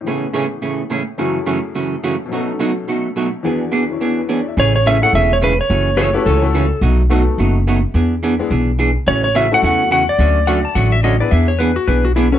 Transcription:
0.01 A2 E3
0.06 A2 C#3 E3 A3 B3 C#4 G#4
0.11 G#4
0.33 A2 C#3 E3 A3 C#4 G#4
0.62 A2 C#3 E3 A3 C#4 G#4
0.90 A2 C#3 E3 A3 C#4 G#4
1.18 F#2 C#3 E3 F#3 A3 C#4 E4 F#4 G#4
1.46 F#2 C#3 E3 A3 C#4 F#4
1.75 F#2 C#3 E3 A3 C#4 F#4
2.03 F#2 C#3 E3 A3 C#4 F#4
2.26 B2 F#3
2.32 B2 F#3 A3 C#4 D#4 F#4
2.37 A4
2.59 B2 F#3 A3 D#4 F#4
2.88 B2 F#3 A3 D#4 F#4
3.16 B2 F#3 A3 D#4 F#4
3.43 E2 E3 B3 D4 F#4 G#4
3.72 E3 B3 D4 G#4
3.90 E3 C#4 E4
4.01 E3 B3 D4 G#4
4.19 B4
4.29 E3 B3 D4 G#4 C#5
4.39 D5
4.48 E5
4.57 A1 C#3 E3 A3 C#4 G#4 C#5
4.76 C#5
4.86 C#3 E3 A3 C#4 G#4 E5
5.02 A3 C#4 E4 G#4 A4 F#5
5.13 E1 C#3 E3 A3 C#4 G#4 E5
5.33 C#5
5.41 C#3 E3 A3 C#4 G#4 B4
5.61 C#5
5.70 F#1 C#3 E3 A3 C#4 F#4
5.97 C#3 E3 A3 C#4 F#4 A4 C#5
6.14 A3 C#4 E4 F#4 G4 A4 B4
6.26 C#2 C#3 E3 A3 C#4 F#4 A4
6.42 A3 C#4 E4 F#4 A4
6.54 C#3 E3 A3 C#4 F#4
6.81 B1 B2 F#3 A3 D#4 F#4
7.09 B2 F#3 A3 B3 D#4 F#4 A4
7.38 F#1 B2 F#3 A3 D#4 F#4
7.67 B2 F#3 A3 D#4 F#4
7.94 E2 E3 B3 D4 G#4
8.23 E3 B3 D4 G#4
8.39 G#3 B3 D4 E4 G#4
8.50 B1 E3 B3 D4 G#4
8.79 E3 B3 D4 G#4
9.07 A1 C#3 E3 A3 C#4 F#4 C#5
9.24 C#5
9.35 C#3 E3 A3 C#4 F#4 E5
9.51 A3 C#4 E4 F#4 A4 F#5
9.63 E2 C#3 E3 A3 C#4 F#4 F#5
9.91 C#3 E3 A3 C#4 F#4 F#5
10.09 D5
10.18 D2 D3 F#3 A3 C#4 F#4
10.47 D3 F#3 A3 C#4 F#4 F#5
10.65 A5
10.75 A1 D3 F#3 A3 C#4 F#4 F#5
10.92 E5
11.03 D3 F#3 A3 C#4 F#4 D#5
11.20 B3 D4 E4 G#4 B4 D5
11.31 E2 E3 B3 D4 G#4 E5
11.48 C#5
11.59 E3 B3 D4 G#4 B4
11.76 F#4
11.87 B1 E3 B3 D4 G#4 B4
12.05 F#4
12.16 E3 B3 D4 E4 G#4
12.32 A3 C#4 F#4 A4 C#5

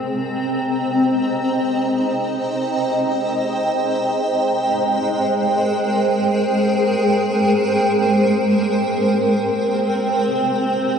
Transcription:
Already playing: G#3 C4 A#4 C5 G5 A#5
0.21 D#5
3.97 G#3
4.22 G#4
5.10 A#4
9.29 C4
10.34 D#5
10.84 A#5

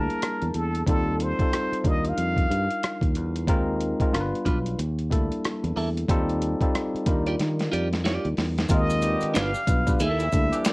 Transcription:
Already playing: G3 A#3 D4 E4 G#4 A#4 A5
0.10 closed hi-hat
0.22 cross-stick, closed hi-hat
0.42 E2, closed hi-hat
0.54 E2 A4, closed hi-hat
0.75 closed hi-hat
0.86 D#2 G3 C4 D#4 F4 A4, kick, closed hi-hat
1.20 C5, closed hi-hat
1.39 G3 C4 D#4 F4 A4, kick, closed hi-hat
1.53 cross-stick, closed hi-hat
1.72 muted fingered electric bass stroke, closed hi-hat
1.84 D#2 G3 D4 D#4 F4 A#4 D#5, kick, closed hi-hat
2.05 closed hi-hat
2.09 F5
2.18 F2, closed hi-hat
2.37 kick, closed hi-hat
2.50 G2, closed hi-hat
2.71 closed hi-hat
2.83 cross-stick, closed hi-hat
3.01 D#2, kick, closed hi-hat
3.15 E2, closed hi-hat
3.36 closed hi-hat
3.47 D#2 G#3 C4 D#4 F4 A#4, kick, closed hi-hat
3.81 closed hi-hat
4.00 G#3 C4 D#4 F4 A#4, muted fingered electric bass stroke, kick, closed hi-hat
4.12 G1 G3 B3 D4 F4 A#4, cross-stick, closed hi-hat
4.21 B4
4.34 muted fingered electric bass stroke, closed hi-hat
4.45 B1 D4 F4 B4, kick, cross-stick, closed hi-hat
4.66 closed hi-hat
4.79 D#2, closed hi-hat
4.99 closed hi-hat
5.10 D2 G3 A#3 D4 E4 A4, kick, closed hi-hat
5.32 closed hi-hat
5.44 cross-stick, closed hi-hat
5.64 E2, closed hi-hat
5.76 E2 A#3 E4 A4, open hi-hat
5.97 closed hi-hat
6.08 D#2 G3 C4 D#4 F4 A4, kick, closed hi-hat
6.29 closed hi-hat
6.42 closed hi-hat
6.61 G3 C4 D#4 F4 A4, muted fingered electric bass stroke, kick, closed hi-hat
6.75 cross-stick, closed hi-hat
6.95 muted fingered electric bass stroke, closed hi-hat
7.06 D#2 G3 D4 D#4 F4 A#4, kick, closed hi-hat
7.26 F4 G4 D5, closed hi-hat
7.39 D#3, muted clean electric guitar stroke, snare, closed hi-hat
7.59 snare, closed hi-hat
7.72 F2 F4 G4 D5, closed hi-hat
7.93 snare, closed hi-hat
8.04 F4 G4 D5, snare, closed hi-hat
8.25 D#2, closed hi-hat
8.37 E2, snare, open hi-hat
8.58 snare, closed hi-hat
8.69 D#2 D#3 G#3 C4 F4 A#4, kick, closed hi-hat, maracas
8.73 D#5
8.90 closed hi-hat, maracas
9.01 D3 G3 B3 G4, closed hi-hat, maracas
9.21 muted fingered electric bass stroke, closed hi-hat, maracas
9.34 G1 D4 F4 B4, finger snap, snare, closed hi-hat, maracas
9.38 F5
9.54 muted fingered electric bass stroke, maracas
9.67 B1 G3 B3 D4 F4 B4, kick, closed hi-hat, maracas
9.87 G3 B3 D4 F4 B4, kick, closed hi-hat, maracas
10.00 D#2 A#3 E4 A4 E5, closed hi-hat, maracas
10.19 A#2 E3 A3 E4, closed hi-hat, maracas
10.32 D2 G3 A#3 D4 E4 A4, kick, closed hi-hat, maracas
10.52 E3 G3 D4 G4, closed hi-hat, maracas
10.65 D5, finger snap, snare, closed hi-hat, maracas

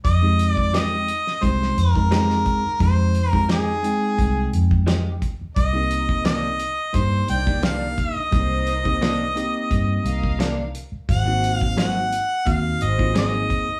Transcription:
0.05 F2 D#5, kick, closed hi-hat
0.22 G#3 C4 D#4 G4
0.39 closed hi-hat
0.50 D5
0.57 kick
0.74 F3 G#3 D#4 G4 D#5, snare, closed hi-hat
1.08 closed hi-hat
1.27 snare
1.41 C2 G#3 C4 D#4 G4 C5, kick, closed hi-hat
1.62 snare
1.77 F2 A#4, closed hi-hat
1.94 G#3 C4 D#4 A#4, kick
2.11 F3 G#3 C4 D#4 G4 G#4 A#4, snare, closed hi-hat
2.30 snare
2.46 kick, closed hi-hat
2.65 muted fingered electric bass stroke
2.79 F2 G#3 C4 D#4 G4 C5, kick, closed hi-hat
3.15 closed hi-hat
3.30 G#3 C4 D#4 G4 A#4, kick
3.49 F3 G#3 D#4 G4 G#4, snare, closed hi-hat
3.83 G#3 C4 D#4 G5, closed hi-hat
4.18 C2, kick, closed hi-hat
4.53 F2, closed hi-hat
4.71 kick
4.87 F3 G#3 D#4 G4, snare, closed hi-hat
5.22 kick, closed hi-hat
5.41 muted fingered electric bass stroke
5.55 C2 A#4 D#5, kick, closed hi-hat
5.73 A#3 C4 D#4 G4
5.91 closed hi-hat
6.09 kick
6.25 C3 D#3 A#3 D4 D#5, snare, closed hi-hat
6.60 closed hi-hat
6.93 G2 A#3 D4 D#4 G4 C5, kick, closed hi-hat
7.27 C2 D#4 A#4 D5 G5, closed hi-hat
7.46 A#3 D4 D#4 G4, kick
7.62 C3 D#3 A#3 D4 D#4 G4 F5, snare, closed hi-hat
7.98 D#5, kick, closed hi-hat
8.16 muted fingered electric bass stroke
8.31 C2 A#3 C4 D#4 G4 A#4 C5, kick, closed hi-hat
8.67 closed hi-hat
8.84 A#3 C4 D#4 G4, kick
9.01 C3 D#3 A#3 D4, snare, closed hi-hat
9.35 A#3 C4 D#4 G4, closed hi-hat
9.71 G2, kick, closed hi-hat
10.04 C2 A#4 F5, closed hi-hat
10.23 kick
10.39 C3 D#3 A#3 D4, snare, closed hi-hat
10.75 closed hi-hat
10.92 muted fingered electric bass stroke
11.09 G#1 F#4 G#4 C5 F#5, kick, closed hi-hat
11.26 A#3 C4 D#4 F#4
11.44 closed hi-hat
11.56 F5
11.61 kick
11.77 G#2 F#3 C4 D#4 F#5, snare, closed hi-hat
12.13 closed hi-hat
12.45 D#2 A#3 C4 D#4 F#4 F5, kick, closed hi-hat
12.80 G#1 F#4 G#4 C5 D#5, closed hi-hat
12.98 A#3 C4 D#4 F4, kick
13.14 G#2 F#3 A#3 C4 D#4 G#4 D#5, snare, closed hi-hat
13.50 kick, closed hi-hat
13.68 muted fingered electric bass stroke

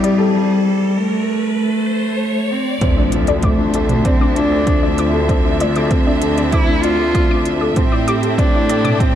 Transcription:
Already playing: A2 G3 A3 C4 E4 G4 A4, riser
0.03 G4 D5, closed hi-hat
0.18 A4
0.34 G3
0.67 G3
0.97 A3
1.58 A3
2.51 C4
2.81 D2 D3 F3 C4 D4 C5 E5, kick, closed hi-hat, impact
2.97 D4 D5
3.12 F4, closed hi-hat
3.27 A4 D5, closed hi-hat
3.43 A3 C4 D6, kick, closed hi-hat
3.58 D4
3.73 A4 D5, closed hi-hat
3.89 A4, closed hi-hat, mid tom
4.05 C4 D5, kick, closed hi-hat
4.20 D4 D6
4.36 D4 F4, closed hi-hat
4.52 A4 D5
4.67 C4, kick, closed hi-hat
4.83 D4 D5
4.98 F4 D6, closed hi-hat
5.13 A4
5.29 A3 C4 D5, kick, closed hi-hat
5.45 D4
5.60 F4 D5, closed hi-hat
5.76 A4 D6, closed hi-hat
5.90 C4, kick, closed hi-hat
6.07 D4 D5
6.22 A4, closed hi-hat
6.38 A4 D5, closed hi-hat
6.51 C4 E4 D6, kick, closed hi-hat
6.69 D4
6.83 F4 D5, closed hi-hat
7.00 A4
7.14 C4 D5, kick, closed hi-hat
7.29 D4 D6
7.45 F4, closed hi-hat
7.61 A4 D5
7.76 A2 A3 C4 A4 C5 G5, kick, closed hi-hat
7.92 E4 D5
8.07 G4 D6, closed hi-hat
8.23 A4, closed hi-hat
8.38 C4 D4 D5, kick, closed hi-hat
8.55 E4
8.69 A4 D5, closed hi-hat
8.84 A4 D6, closed hi-hat, mid tom
8.99 C4, kick, closed hi-hat

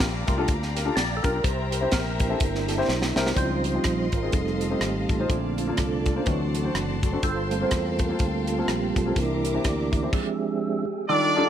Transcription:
Already playing: G2 D5 F5 G5 A#5
0.00 A#1, kick, snare
0.27 C2 A3 A#3 F4 G4 A#4, kick, closed hi-hat
0.38 D4 F4 G4 A4
0.48 D2, kick, closed hi-hat
0.62 snare
0.75 G4 A#4, snare, closed hi-hat
0.85 D4 F4 G4 A4
0.96 A#1 D5, snare, closed hi-hat
1.17 A4
1.23 B1 D4 F4 G4 A#4, kick, closed hi-hat
1.44 C2 C3 C5 E5, kick, closed hi-hat
1.71 G4 A#4, closed hi-hat
1.81 C4 E4 G4 C5
1.92 A#1 A#4, kick, snare, closed hi-hat
2.18 A#3 D4 E4 G4 A#4, kick, closed hi-hat
2.29 C4 E4 G4 A4
2.40 G1, kick, closed hi-hat
2.55 snare
2.67 G4 A4, snare, closed hi-hat
2.78 C4 E4 G4 C5
2.88 B1, snare
3.02 snare
3.16 C2 C4 E4 G4 A#4, snare
3.26 snare
3.36 C#2 C#3 F3 G3 C4 D#4 F4 C5 D#5 F5 G5 C6, kick, closed hi-hat
3.64 F4 G4, closed hi-hat
3.74 C4 D#4 F4 G4
3.84 A#1, kick, cross-stick, closed hi-hat
4.12 G#1 F4 A#4, kick, closed hi-hat
4.22 C4 D#4 F4 G#4
4.32 F1 G3 A3 C4 D#4 A4 A5, kick, closed hi-hat
4.47 cross-stick
4.61 F4 A4, closed hi-hat
4.71 C4 D#4 F4 G4
4.81 G#1 C4 D#4 G4, cross-stick, closed hi-hat
5.09 A1 F4 A4, kick, closed hi-hat
5.19 C4 D#4 F4 C5
5.29 A#1 A#2 D3 A3 C4 D4 F4 D5, kick, closed hi-hat
5.57 F4 A4, closed hi-hat
5.67 A#3 D4 F4 A4
5.77 C2 D4 F4 A4, kick, cross-stick, closed hi-hat
6.06 F4 A4, kick, closed hi-hat
6.15 A#3 D4 F4 C5
6.26 D2 D3 E3 F#3 A3 C4 F#4 F#5 C6, kick, closed hi-hat
6.54 F#4 A4, cross-stick, closed hi-hat
6.64 C4 D4 F#4 C5
6.75 F#1, cross-stick, closed hi-hat
7.02 F#4 A4, kick, closed hi-hat
7.12 C4 D4 F#4 A4
7.23 G1 G2 F4 A4 C5 F5 G5, kick, closed hi-hat
7.51 G3 A3 A#3 C4 F4 A4, closed hi-hat
7.61 A#3 C4 F4 C5
7.71 E2, kick, cross-stick, closed hi-hat
7.99 F4 A#4 C5, kick, closed hi-hat
8.09 A#3 C4 F4 A4
8.19 D2 C4 F4 A4, kick, closed hi-hat
8.47 F4 A4, cross-stick, closed hi-hat
8.58 A#3 C4 F4 A4
8.68 A#1 A#3 C4 G4, cross-stick, closed hi-hat
8.96 B1 F4 A4, kick, closed hi-hat
9.06 A#3 C4 F4 A4
9.15 C2 C3 E3 A#3 D4 E4 A#4 E5 A#5 D6, kick, closed hi-hat
9.44 E4 A#4, closed hi-hat
9.54 C4 D4 E4 G4
9.64 D2 G4 A#4 D5, kick, cross-stick, closed hi-hat
9.92 E4 A#4, kick, closed hi-hat
10.03 C4 D4 E4 G4
10.13 F3 G#3 C4 D4 G4 G#4 E5, kick, crash
11.08 D#3 G3 D4 D#4 F4 G4 A4 D5
11.36 D4 D#4 F4 G4 A4

